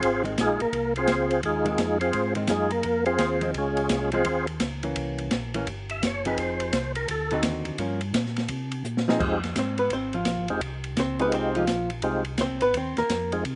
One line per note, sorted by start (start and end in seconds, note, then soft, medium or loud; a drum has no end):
0.00 0.36 G#1 medium
0.00 0.23 C4 medium
0.00 0.23 F4 medium
0.00 0.23 G#4 medium
0.00 0.23 C5 loud
0.00 kick soft
0.00 ride medium
0.23 0.35 D#3 medium
0.23 0.36 G#3 medium
0.23 0.36 C4 medium
0.23 ride soft
0.38 0.58 A#1 medium
0.38 0.61 G#3 medium
0.38 0.61 D#4 medium
0.38 0.61 F4 medium
0.38 0.61 G#4 medium
0.38 kick soft
0.38 snare medium
0.38 hi-hat pedal medium
0.38 ride medium
0.60 0.67 A#1 soft
0.60 0.94 A#3 medium
0.60 0.94 A#4 medium
0.60 ride soft
0.72 1.07 C2 medium
0.72 kick soft
0.72 ride medium
0.96 1.41 C4 medium
0.96 1.41 F4 medium
0.96 1.41 G#4 medium
0.96 1.41 C5 loud
0.96 ride soft
1.07 1.42 C#2 loud
1.07 kick soft
1.07 snare medium
1.07 hi-hat pedal medium
1.07 ride medium
1.31 ride soft
1.43 1.78 D#2 medium
1.43 1.98 G#3 medium
1.43 1.98 D#4 medium
1.43 1.99 F4 medium
1.43 1.98 G#4 medium
1.43 kick soft
1.43 ride medium
1.65 1.77 D#3 medium
1.65 1.77 G#3 medium
1.65 1.77 C4 medium
1.65 ride soft
1.78 2.13 F2 medium
1.78 kick soft
1.78 snare medium
1.78 hi-hat pedal medium
1.78 ride medium
2.00 2.34 C4 medium
2.00 2.34 F4 medium
2.00 2.34 G#4 medium
2.00 2.33 C5 medium
2.00 ride soft
2.13 2.48 G#2 medium
2.13 kick soft
2.13 ride medium
2.35 2.47 D#3 medium
2.35 2.48 G#3 medium
2.35 2.48 C4 medium
2.35 ride soft
2.47 2.83 F#2 medium
2.47 2.72 G#3 medium
2.47 2.72 D#4 medium
2.47 2.71 F4 medium
2.47 2.71 G#4 medium
2.47 kick soft
2.47 snare medium
2.47 hi-hat pedal medium
2.47 ride medium
2.71 3.05 A#3 medium
2.71 3.05 A#4 medium
2.71 ride soft
2.83 3.18 F2 medium
2.83 kick soft
2.83 ride medium
3.06 3.51 C4 medium
3.06 3.51 F4 medium
3.06 3.51 G#4 medium
3.06 3.51 C5 loud
3.06 ride soft
3.18 3.53 D#2 medium
3.18 kick soft
3.18 snare medium
3.18 hi-hat pedal soft
3.18 ride medium
3.41 3.53 F3 medium
3.41 3.54 G#3 medium
3.41 3.54 C4 medium
3.41 ride soft
3.54 3.89 C#2 medium
3.54 4.10 G#3 medium
3.54 4.10 G#4 medium
3.54 kick soft
3.54 ride medium
3.58 4.11 C#4 soft
3.58 4.11 F4 medium
3.77 ride soft
3.89 4.24 C2 medium
3.89 kick soft
3.89 snare medium
3.89 hi-hat pedal medium
3.89 ride medium
4.12 4.24 F3 medium
4.12 4.25 G#3 medium
4.12 4.25 C4 medium
4.12 4.46 C4 medium
4.12 4.47 F4 medium
4.12 4.46 G#4 medium
4.12 4.46 C5 medium
4.12 ride soft
4.25 4.60 D#2 medium
4.25 kick soft
4.25 ride medium
4.47 ride soft
4.60 4.95 C#2 medium
4.60 kick soft
4.60 snare medium
4.60 hi-hat pedal medium
4.60 ride medium
4.83 5.29 E3 medium
4.83 5.29 A#3 medium
4.83 5.29 C#4 medium
4.83 ride soft
4.96 5.30 C2 medium
4.96 kick soft
4.96 ride medium
5.18 ride soft
5.31 5.66 A#1 medium
5.31 kick soft
5.31 snare medium
5.31 hi-hat pedal soft
5.31 ride medium
5.54 5.66 E3 medium
5.54 5.66 A#3 medium
5.54 5.66 C#4 medium
5.54 ride soft
5.67 6.01 G1 medium
5.67 kick soft
5.67 ride medium
5.89 6.02 E5 medium
5.89 ride soft
6.02 6.36 F#1 medium
6.02 kick soft
6.02 snare medium
6.02 hi-hat pedal medium
6.02 ride medium
6.07 6.26 C#5 medium
6.25 6.71 F3 medium
6.25 6.71 C4 medium
6.25 6.71 D#4 medium
6.25 6.71 G#4 medium
6.25 6.38 B4 medium
6.25 ride soft
6.38 6.72 F1 medium
6.38 6.92 C5 loud
6.38 kick soft
6.38 ride medium
6.60 ride soft
6.73 7.07 C2 medium
6.73 kick soft
6.73 snare medium
6.73 hi-hat pedal medium
6.73 ride medium
6.95 7.08 A#4 medium
6.95 ride soft
7.08 7.42 D2 medium
7.08 7.42 A4 loud
7.08 kick soft
7.08 ride medium
7.31 7.77 D3 medium
7.31 7.77 C4 medium
7.31 7.77 D#4 medium
7.31 7.78 F#4 medium
7.31 ride soft
7.43 7.64 D#2 medium
7.43 kick soft
7.43 snare medium
7.43 hi-hat pedal medium
7.43 ride medium
7.65 7.72 D#2 soft
7.65 ride soft
7.78 8.13 G2 medium
7.78 7.99 F3 medium
7.78 7.99 A#3 medium
7.78 8.00 C#4 medium
7.78 kick soft
7.78 ride medium
8.01 ride soft
8.14 8.48 A#2 medium
8.14 kick soft
8.14 snare medium
8.14 hi-hat pedal medium
8.14 ride medium
8.26 snare soft
8.36 snare soft
8.36 ride soft
8.48 8.83 C3 medium
8.48 kick soft
8.48 ride medium
8.72 ride soft
8.84 9.19 A#2 medium
8.84 hi-hat pedal medium
8.97 snare medium
9.08 9.19 F3 medium
9.08 9.19 C4 medium
9.08 9.20 D#4 medium
9.08 9.20 G#4 medium
9.08 snare medium
9.19 9.54 F2 medium
9.19 9.40 G#3 medium
9.19 9.40 C4 medium
9.19 9.40 D#4 medium
9.19 9.40 F4 medium
9.19 9.41 G4 medium
9.19 kick medium
9.19 crash medium
9.43 snare soft
9.43 ride soft
9.56 9.90 G#2 medium
9.56 9.79 C4 medium
9.56 9.79 C5 medium
9.56 kick soft
9.56 snare medium
9.56 hi-hat pedal medium
9.56 ride medium
9.78 9.91 B3 medium
9.78 9.91 B4 medium
9.78 ride soft
9.90 10.25 G#1 medium
9.90 10.15 C4 medium
9.90 10.14 C5 medium
9.90 kick soft
9.90 ride medium
10.13 10.47 F3 medium
10.13 10.47 F4 medium
10.13 ride soft
10.25 10.38 A#1 medium
10.25 kick soft
10.25 snare medium
10.25 hi-hat pedal medium
10.25 ride medium
10.38 10.50 G#1 soft
10.48 10.61 F1 medium
10.48 10.61 G#3 medium
10.48 10.61 C4 medium
10.48 10.61 D#4 medium
10.48 10.61 F4 medium
10.48 10.61 G4 medium
10.48 ride soft
10.61 10.96 C2 medium
10.61 kick soft
10.61 ride medium
10.84 ride soft
10.97 11.31 C#2 medium
10.97 11.21 C4 medium
10.97 11.20 C5 medium
10.97 kick soft
10.97 snare medium
10.97 hi-hat pedal soft
10.97 ride medium
11.19 11.65 G#3 medium
11.19 11.33 B3 medium
11.19 11.65 C4 medium
11.19 11.65 D#4 medium
11.19 11.65 F4 medium
11.19 11.66 G4 medium
11.19 11.33 B4 medium
11.19 ride soft
11.32 11.67 C2 medium
11.32 11.56 C4 medium
11.32 11.55 C5 medium
11.32 kick soft
11.32 ride medium
11.55 11.89 F3 medium
11.55 11.89 F4 medium
11.55 ride soft
11.67 12.02 A#1 medium
11.67 kick soft
11.67 snare medium
11.67 hi-hat pedal medium
11.67 ride medium
11.90 ride soft
12.02 12.38 C2 medium
12.02 12.24 G#3 medium
12.02 12.24 C4 medium
12.02 12.24 D#4 medium
12.02 12.24 F4 medium
12.02 12.24 G4 medium
12.02 kick soft
12.02 ride medium
12.25 ride soft
12.38 12.50 C#2 medium
12.38 12.62 C5 medium
12.38 kick soft
12.38 snare medium
12.38 hi-hat pedal soft
12.38 ride medium
12.42 12.62 C4 medium
12.51 12.62 C2 medium
12.61 12.73 G#1 medium
12.61 12.74 B3 medium
12.61 12.74 B4 medium
12.61 ride soft
12.74 12.95 D#2 medium
12.74 12.98 C4 medium
12.74 12.98 C5 medium
12.74 kick soft
12.74 ride medium
12.97 13.04 D#2 soft
12.97 13.31 A#3 medium
12.97 13.31 A#4 medium
12.97 snare soft
12.97 ride soft
13.10 13.44 F2 medium
13.10 kick soft
13.10 snare medium
13.10 hi-hat pedal medium
13.10 ride medium
13.32 13.44 G#3 medium
13.32 13.44 C4 medium
13.32 13.44 D#4 medium
13.32 13.44 F4 medium
13.32 13.44 G#4 medium
13.32 ride soft
13.45 13.55 C3 medium
13.45 kick soft
13.45 ride medium